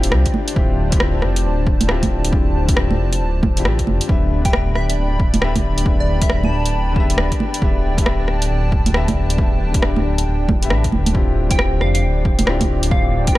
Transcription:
Already playing: D1 D3 C4 D4 E4 F4 G4 C5 D5 G5
0.04 closed hi-hat
0.12 C2, cross-stick
0.26 kick, closed hi-hat
0.34 low bongo
0.48 closed hi-hat
0.54 D1 D3 C4 E4 F4 G4 A5, kick
0.88 D3 C4 E4, closed hi-hat
0.92 F4, kick
0.97 G4, cross-stick
1.01 D1
1.22 F1, cross-stick
1.36 closed hi-hat
1.45 D1
1.67 kick
1.81 closed hi-hat, low bongo
1.87 D3 C4 E4 F4 G4, cross-stick
2.03 kick, closed hi-hat, low bongo
2.25 closed hi-hat
2.31 D1 D3 C4 E4 F4, kick
2.35 G4
2.65 D3 C4, kick, closed hi-hat
2.69 E4 F4 G4
2.77 D1, cross-stick
2.91 low bongo
2.99 F1
3.13 closed hi-hat
3.21 D1
3.43 kick, low bongo
3.55 D3 C4 E4 F4, closed hi-hat
3.60 G4
3.64 A1 D3 C4 E4 F4 G4, cross-stick
3.79 kick, closed hi-hat
3.87 F1, low bongo
4.01 closed hi-hat
4.07 D1 D3 B3 D4 G4 D5 E5 G5 B5, kick
4.41 D3 B3, kick, closed hi-hat
4.45 G4 E5 G5
4.53 D1, cross-stick
4.75 D1 E5, cross-stick
4.90 E5, closed hi-hat
4.98 D1
5.20 kick
5.34 closed hi-hat, low bongo
5.41 D3 B3 G4 E5, cross-stick
5.56 kick, closed hi-hat, low bongo
5.78 closed hi-hat
5.85 D1 D3 B3 G4 E5, kick
6.00 D5
6.18 D3 B3, kick, closed hi-hat
6.22 G4 E5
6.30 D1, cross-stick
6.44 A5, low bongo
6.53 D1
6.66 closed hi-hat
6.74 D1
6.92 D3 B3
6.96 G4 E5, kick
7.10 closed hi-hat
7.18 D1, cross-stick
7.32 kick, closed hi-hat
7.40 low bongo
7.54 closed hi-hat
7.60 D1 D3 B3 G4 A5, kick
7.64 E5
7.94 D3 B3, kick
7.98 G4 E5, closed hi-hat
8.06 D1, cross-stick
8.28 D1, cross-stick
8.42 closed hi-hat
8.50 D1
8.72 kick
8.86 closed hi-hat, low bongo
8.93 D3 B3 G4 E5, cross-stick
9.08 kick, closed hi-hat, low bongo
9.30 closed hi-hat
9.37 D1 D3 B3 G4, kick
9.41 E5
9.71 D3 B3, kick, closed hi-hat
9.77 G4 E5
9.82 D1, cross-stick
9.96 low bongo
10.04 D1
10.18 closed hi-hat
10.27 D1
10.49 kick, low bongo
10.61 D3 B3 G4, closed hi-hat
10.65 E5
10.70 A1 D3 B3 G4, cross-stick
10.74 E5
10.84 kick, closed hi-hat
10.92 D1, low bongo
11.06 closed hi-hat, low bongo
11.13 D1 D3 C4 E4 F4 C5 D5, kick
11.17 G4
11.47 D3 C4 E4, kick, closed hi-hat
11.51 F4 G4 G5
11.59 D1, cross-stick
11.81 F1 F5, cross-stick
11.94 F5, closed hi-hat
12.03 D1
12.25 kick
12.39 closed hi-hat, low bongo
12.45 D3 C4 E4 F4, cross-stick
12.49 G4
12.61 kick, closed hi-hat, low bongo
12.83 closed hi-hat
12.89 D1 D3 C4 E4 F4 F5, kick
12.93 G4
13.24 D3 C4 G5, kick, closed hi-hat
13.28 D4 F4 G4

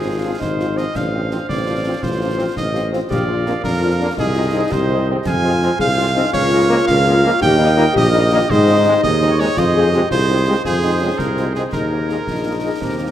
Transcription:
Already playing: G#1 F4 G#4 C5 F5
0.05 F3 C4 F4
0.22 F3 C4 F4
0.39 G#1 D#4 C5, concert bass drum, snare
0.59 F3 C4 F4, snare
0.75 F3 C4 F4 D#5, snare
0.94 A1 D4 C5 F5, concert bass drum, snare, crash
1.13 F3 C4 F4
1.30 F3 C4 F4, snare
1.49 A1 C4 D5, concert bass drum, snare
1.67 F3 C4 F4
1.85 F3 C4 F4
2.02 A1 F4 C5, concert bass drum, snare
2.21 F3 C4 F4
2.38 F3 C4 F4
2.56 A1 D#4 D#5, concert bass drum, snare
2.73 F3 C4 F4 G4, snare
2.91 F3 C4 F4, snare
3.10 A#1 G4 A#4 D5 F5, concert bass drum, snare
3.28 F3 D4 F4
3.46 F3 A#3 C4 D4 F4, snare
3.63 F2 D4 A#4, concert bass drum, snare
3.81 F3 D4 F4
4.00 F3 A#3 D4 F4
4.17 C2 D#4 G#4 C5 D#5, concert bass drum, snare
4.35 G#3 C4 D#4 F4
4.53 D#3 G#3 C4 D#4
4.71 C2 G4 C5, concert bass drum, snare
4.90 G#3 C4 D#4
5.09 D#3 G#3 C4 D#4
5.26 F2 F4 C5 F5 G#5, concert bass drum, snare, crash
5.44 G#3 C4 F4
5.62 F3 G#3 C4 F4, snare
5.79 C2 G#4 C5 F5, concert bass drum, snare
5.97 G#3 C4 F4
6.14 F3 G#3 C4 D#4 F4
6.33 C#2 F4 A#4 C#5 F5, concert bass drum, snare
6.53 G#3 A#3 F4
6.69 F3 G#3 A#3 F4
6.87 C#2 A#4 F5, concert bass drum, snare
7.06 G#3 A#3 F4, snare
7.23 F3 G#3 A#3 F4, snare
7.41 D#2 G4 A#4 D#5 G5, concert bass drum, snare
7.59 G3 A#3 D#4
7.77 D#3 G3 A#3 D#4 F4, snare
7.94 A#1 G4 A#4 D#5, concert bass drum, snare
8.12 G3 A#3 D#4
8.30 D#3 G3 A#3 D#4 F4
8.49 G#2 D#4 G#4 C5 D#5, concert bass drum, snare
8.68 G#3 C4 D#4
8.86 D#3 G#3 C4 D#4
9.03 D#2 G#4 D#5, concert bass drum, snare
9.22 G#3 C4 D#4, snare
9.30 C#5
9.39 D#3 G#3 C4 D#4 C#5, snare
9.57 F2 F4 G#4 C5 D#5, concert bass drum, snare, crash
9.75 G#3 C4 F4 G#4
9.93 C3 G#3 C4 F4 G4, snare
10.10 C2 F4 G#4 C5, concert bass drum, snare
10.28 G#3 C4 D#4 F4
10.47 C3 G#3 C4 F4 G4
10.64 F2 F4 G#4 C5, concert bass drum, snare
10.84 G#3 C4 D#4 F4
11.01 C3 G#3 C4 C#4 F4
11.18 C2 C4 A#4, concert bass drum, snare
11.37 G#3 C4 F4, snare
11.55 C3 G#3 C4 F4 G#4, snare
11.73 D#2 D#4 G#4 A#4, concert bass drum, snare
11.92 A#3 D#4 G#4
12.09 A#2 G#3 A#3 D#4 G#4, snare
12.27 A#1 D#4, concert bass drum, snare
12.45 A#3 D#4 G#4
12.63 A#2 G#3 A#3 D#4 G#4
12.81 D#2 C4 G4 A#4, concert bass drum, snare
12.99 A#3 D#4 G4

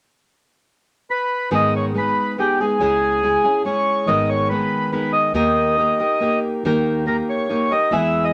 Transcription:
1.11 B4
1.51 G#1 G#2 D#3 G#3 B3 D#4 G#4
1.55 D#5
1.76 C#5
1.94 G#3 B3 D#4 G#4 B4
2.38 G#3 B3 D#4 G4 G#4
2.60 G#3 B3 D#4 G#4
2.80 C#2 C#3 G#3 C#4 E4 G#4
3.23 G#3 C#4 E4 G#4
3.44 C#4 E4 G#4
3.65 G#3 C#4 E4 G#4 C#5
4.06 G#1 G#2 D#3 G#3 B3 D#4 A#4 D#5
4.29 C#5
4.49 G#3 B3 D#4 B4
4.92 G#3 B3 D#4 A#4 B4
5.13 D#5
5.33 D#2 D#3 A#3 D#4 G4 A#4 D#5
5.78 A#3 D#4 G4 A#4
5.99 D#4 G4 A#4
6.20 A#3 D#4 G4 A#4
6.63 D#2 D#3 A#3 D#4 G4 A#4
7.06 A#3 D#4 G4 A#4
7.29 C#5
7.49 A#3 D#4 G4 A#4
7.71 D#4 G4 A#4 D#5
7.91 E2 E3 G#3 B3 E4 G#4 E5
8.24 D#5

